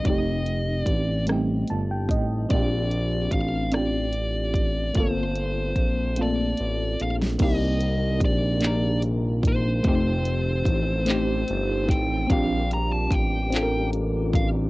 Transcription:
0.04 F1 G3 C4 D#4 D#5, kick, closed hi-hat
0.10 A3 G4
0.46 closed hi-hat
0.84 A1 D5, kick, closed hi-hat
1.26 G3 C4, cross-stick, closed hi-hat
1.31 A3 D#4 G4
1.68 G1 A5, closed hi-hat
1.91 G5
2.09 A1 D#5, kick, closed hi-hat
2.49 A#1 C4 D4 F4 D5, kick, closed hi-hat
2.55 G4
2.91 closed hi-hat
3.31 A1 F5, kick, closed hi-hat
3.72 C4 D4 D5, cross-stick, closed hi-hat
3.76 F4 G4
4.13 closed hi-hat
4.54 kick, closed hi-hat
4.94 G1 A3 C4 C5, kick, closed hi-hat
4.98 A#3 F4 A4
5.36 closed hi-hat
5.76 A#1, kick, closed hi-hat
6.16 A3 C4 F4, closed hi-hat
6.21 A#3 A4 D5
6.57 A1, closed hi-hat
7.00 A#1 F5, closed hi-hat
7.22 snare
7.39 C2 C3 D#3 G3 A#3 C4 D#4, kick, closed hi-hat, crash
7.43 G4 D#5
7.81 closed hi-hat
8.20 A#1, kick, closed hi-hat
8.25 D5
8.61 A#3 D4 D#4, clap, closed hi-hat
8.67 A#4
9.02 closed hi-hat
9.43 kick, closed hi-hat
9.48 C5
9.83 F1 F3 A3 C4 A4, kick, closed hi-hat
9.87 D#4 G4 C5
10.25 closed hi-hat
10.65 A1, kick, closed hi-hat
11.05 A3 C4 D#4, clap, closed hi-hat
11.10 G4
11.48 G1, closed hi-hat
11.88 A1 G5, kick, closed hi-hat
12.27 A#1 G3 A#3 C4 D4 F5, kick, closed hi-hat
12.32 F4 G4
12.71 A#5, closed hi-hat
12.92 A5
13.11 A1 G5, kick, closed hi-hat
13.50 C4 D4 F4, closed hi-hat
13.55 A4, clap
13.63 A#4
13.93 closed hi-hat
14.33 F5, kick, closed hi-hat

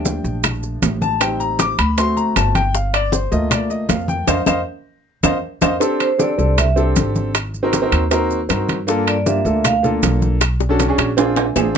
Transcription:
Already playing: D#2 F3 G3 A3 D4 G5
0.05 high bongo, high conga, maracas
0.24 A#1, high bongo, maracas
0.43 high bongo, high conga, low conga, high timbale, claves, maracas
0.63 high bongo, high conga, maracas
0.82 A1, high bongo, low bongo, high conga, high timbale, low timbale, maracas
1.01 A5, high bongo, high conga, maracas
1.20 G3 C4 D#4 G5, high bongo, high conga, high timbale, claves, maracas
1.40 A#5, high conga, maracas
1.59 D6, high bongo, high conga, high timbale, maracas
1.78 D2 B5, high bongo, high conga, high timbale, claves, maracas
1.97 A3 C4 F#4 C6, high bongo, high conga, high timbale, maracas
2.17 A#5, high bongo, high conga, maracas
2.36 G1 A5, high bongo, low bongo, high conga, high timbale, claves, maracas
2.55 G5, high bongo, high conga, high timbale, maracas
2.74 F5, high bongo, high conga, maracas
2.93 D5, high conga, high timbale, claves, maracas
3.12 C5, high bongo, high conga, maracas
3.31 D2 A3 A#3 F4 D#5, high bongo, maracas
3.51 D5, high bongo, high conga, low conga, high timbale, claves, maracas
3.70 D#5, high bongo, high conga, maracas
3.89 F2 F5, high bongo, low bongo, high conga, high timbale, low timbale, maracas
4.08 G5, high bongo, high conga, maracas
4.27 F2 C5 D#5 F5, low bongo, high conga, high timbale, claves, maracas
4.46 F2 C5 D#5 F5, low bongo, high conga, high timbale, claves, maracas
5.23 F2 C5 D#5 F5, low bongo, high conga, high timbale, claves, maracas
5.62 F2 C5 D#5 F5, low bongo, high conga, high timbale, claves, maracas
5.80 C4 D4 G4 A4, high bongo, high conga, maracas
6.00 C5, high conga, high timbale, claves, maracas
6.18 C4 D4 G4 A4 D5, high bongo, high conga, maracas
6.37 C2 C4 D4 G4 A4, high bongo, maracas
6.58 E5, high bongo, high conga, low conga, high timbale, claves, maracas
6.76 C4 D4 G4 A4, high bongo, high conga, maracas
6.96 G#1, high bongo, low bongo, high conga, high timbale, maracas
7.15 high bongo, high conga, maracas
7.35 high bongo, high conga, high timbale, claves, maracas
7.54 high conga, maracas
7.63 C4 D#4 F#4 A#4
7.73 high bongo, high conga, high timbale, maracas
7.82 C4 D#4 F#4 A#4
7.92 D#2, high bongo, high conga, high timbale, claves, maracas
8.11 C4 D#4 F#4 A#4, high bongo, high conga, high timbale, maracas
8.30 high bongo, high conga, maracas
8.49 G2 C4 D#4 F#4 A#4, high bongo, low bongo, high conga, high timbale, claves, maracas
8.69 high bongo, high conga, high timbale, maracas
8.87 A#3 D4 F4 A4, high bongo, high conga, maracas
9.07 D5, high conga, high timbale, claves, maracas
9.26 A#3 D4 F4 G4 E5, high bongo, high conga, maracas
9.44 D2 A#3 D4 F4 A4, high bongo, maracas
9.64 F5, high bongo, high conga, low conga, high timbale, claves, maracas
9.83 A#3 D4 F4 A4, high bongo, high conga, low conga, maracas
10.03 B1, high bongo, low bongo, high conga, high timbale, low timbale, maracas
10.22 high bongo, high conga, maracas
10.41 high bongo, high conga, high timbale, claves, maracas
10.60 high bongo, high conga, maracas
10.69 C#4 D4 F#4 A4
10.79 low bongo, high conga, high timbale, maracas
10.88 C#4 D4 F#4 G#4
10.98 A#1, high bongo, high conga, high timbale, claves, maracas
11.17 C4 D4 F4 G#4, high conga, high timbale, maracas
11.36 G#5, low bongo, high conga, high timbale, maracas
11.56 A1 C4 D4 F4 G#4 F5, low bongo, high conga, low timbale, claves, maracas

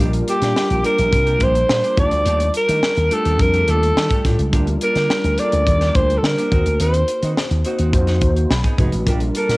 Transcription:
Already playing: G3 G4 D#5
0.00 A#1 A#3 D4 F4 G4 A#4
0.13 G3 D4 F4 A#4, muted clean electric guitar stroke, closed hi-hat
0.28 A#3 D4 G4 A4, closed hi-hat
0.42 A#2 A#3 D4 G4, snare, closed hi-hat
0.56 G3 D4 F4 A#4, snare
0.70 A#1, closed hi-hat
0.84 G3 A#3 D4 F4 G4 A#4, closed hi-hat
0.98 A#1, muted clean electric guitar stroke, closed hi-hat
1.12 C2, muted clean electric guitar stroke, kick, closed hi-hat
1.26 A#3 D4 G4, closed hi-hat
1.40 A#1 A#3 D4 G4 C5, kick, closed hi-hat
1.55 muted clean electric guitar stroke, closed hi-hat
1.69 A#2, snare
1.84 A#3 D4 G4, closed hi-hat
1.96 D#2 G3 A3 D4 F4 G4 D5 A5, kick, closed hi-hat
2.11 D2, muted clean electric guitar stroke, closed hi-hat
2.25 D#2 A3 D4 G4, closed hi-hat
2.40 muted clean electric guitar stroke, closed hi-hat
2.54 A#4, muted clean electric guitar stroke, closed hi-hat
2.68 D#3 A3 D4 G4, closed hi-hat
2.82 muted clean electric guitar stroke, snare
2.97 D#2, closed hi-hat
3.10 G3 A3 D4 F4 G4 A4, closed hi-hat
3.25 D#2 A3 D4 G4, closed hi-hat
3.38 F2 G3 D4 F4 A4 A#4, muted clean electric guitar stroke, kick, closed hi-hat
3.53 A3 D4 G4, closed hi-hat
3.67 D#2 G3 A3 D4 F4 G4 A4, closed hi-hat
3.82 muted clean electric guitar stroke, closed hi-hat
3.96 D#3, snare
4.11 A3 D4 G4, kick, closed hi-hat
4.25 A2 G3 A3 D4 F4 G4 A4, kick, snare, closed hi-hat
4.39 C#2, muted clean electric guitar stroke, closed hi-hat
4.53 D2 G3 A#3 D4 F4 G4 A#4, kick, closed hi-hat
4.67 G3 C#4 F4 A#4, muted clean electric guitar stroke, closed hi-hat
4.75 D4
4.81 A#3 D4 A4 A#4, closed hi-hat
4.95 D3 A#3 D4 G4, snare, closed hi-hat
5.10 G3 D4 F4 A#4, snare
5.24 D2, muted clean electric guitar stroke, closed hi-hat
5.38 G3 A#3 D4 F4 G4 A4 D5, closed hi-hat
5.46 A#4
5.52 D2, muted clean electric guitar stroke, closed hi-hat
5.67 D#2, muted clean electric guitar stroke, kick, closed hi-hat
5.81 A#3 D4 G4, snare, closed hi-hat
5.95 D2 A#3 D4 G4 C5, kick, closed hi-hat
6.09 muted clean electric guitar stroke, closed hi-hat
6.18 A4
6.23 D3 A#4, snare
6.37 A#3 D4 G4, closed hi-hat
6.51 D#2 A#3 C4 D#4 F#4 C5, kick, closed hi-hat
6.66 D2, muted clean electric guitar stroke, closed hi-hat
6.80 D#2 C4 D#4 F#4 C5, closed hi-hat
6.94 muted clean electric guitar stroke, closed hi-hat
7.08 muted clean electric guitar stroke, closed hi-hat
7.23 D#3 C4 D#4 F#4, closed hi-hat
7.36 muted clean electric guitar stroke, snare
7.51 D#2, muted clean electric guitar stroke, closed hi-hat
7.65 A#3 C4 D#4 F#4 C5, closed hi-hat
7.79 D#2 C4 D#4 F#4, closed hi-hat
7.93 F2 A#3 D#4 F#4 C5, kick, closed hi-hat
8.07 C4 D#4 F#4, snare, closed hi-hat
8.21 D#2 A#3 D#4 F#4 C5, muted clean electric guitar stroke, kick, closed hi-hat
8.36 muted clean electric guitar stroke, closed hi-hat
8.50 B1 B5, muted clean electric guitar stroke, snare
8.64 B3 D#4 G#4, kick, closed hi-hat
8.78 F1 G#3 B3 D#4 F#4 G#4 B4, kick, closed hi-hat
8.92 A1, muted clean electric guitar stroke, closed hi-hat
9.05 A#1 G3 A#3 D4 F4 G4 A#4, kick, closed hi-hat
9.20 G3 D4 F4 A4, muted clean electric guitar stroke, closed hi-hat
9.28 A#4
9.35 A#3 D4 A4 A#4, closed hi-hat
9.49 A#2 A#3 D4 G4, snare, closed hi-hat

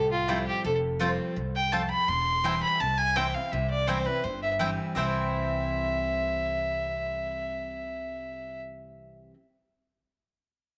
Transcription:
Already playing: C2 A2 A4
0.11 F4
0.28 F3 G3 A3 C4 E4 F4 C5 G5
0.47 G4
0.64 F1 F2 A4
0.99 F3 G3 A3 C4 F4 C5 G5
1.36 C2 G2
1.55 G5
1.72 F2 A3 F4 C5 G5 A5
1.90 B5
2.08 E1 E2 C6
2.44 E3 G3 C4 E4 C5 G5
2.63 B5
2.80 C2 C3 A5
2.98 G#5
3.16 E3 G3 C4 E4 C5 G5
3.34 C4 E4 F5
3.52 C2 C3 E5
3.70 D5
3.87 E3 G3 C4 E4 C5 G5
4.06 C4 E4 B4
4.24 G1 G2 C5
4.42 E5
4.59 E3 G3 C4 E4 C5 G5
4.95 C2 C3 E3 G3 C4 E4 C5 E5 G5

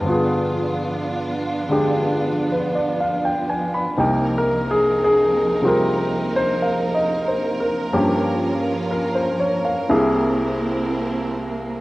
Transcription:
Already playing: F4
0.01 G2 D3
0.05 F3 B3 D4 F4
0.12 G#4
1.69 D3 G#3 D4 G4
2.52 B4
2.75 D5
3.00 F5
3.25 G5
3.50 G#5
3.74 B5
3.97 C2 C3 A#3 C4 D#4 A#4 G5
4.38 A#4
4.71 G#4
5.04 G#4
5.62 C3 G3 C4 F4
5.68 A#4
6.36 C5
6.62 F5
6.95 D#5
7.28 C5
7.60 A#4
7.92 G2 F3 A#3 C#4 F4 G4
8.91 A#4
9.15 C5
9.40 C#5
9.65 F5
9.89 C2 C3 A#3 C4 E4 G#4

